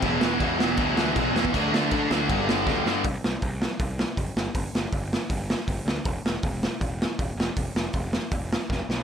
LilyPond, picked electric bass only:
\new Staff \with { instrumentName = "Picked electric bass" } { \clef bass \time 4/4 \key g \major \tempo 4 = 159 e,,8 e,,8 e,8 e,,8 d,4 b,,8 e,8 | d,8 d,8 d8 d,8 g,,4 d,8 g,8 | \key g \mixolydian c,8 c,8 c,4 c,4 fis,,8 g,,8 | g,,8 g,,8 g,,4 g,,4 g,,8 d,8 |
e,,8 e,,8 e,,4 e,,4 e,,8 f,,8 | f,,8 f,,8 f,,4 f,,4 f,,8 b,,8 | }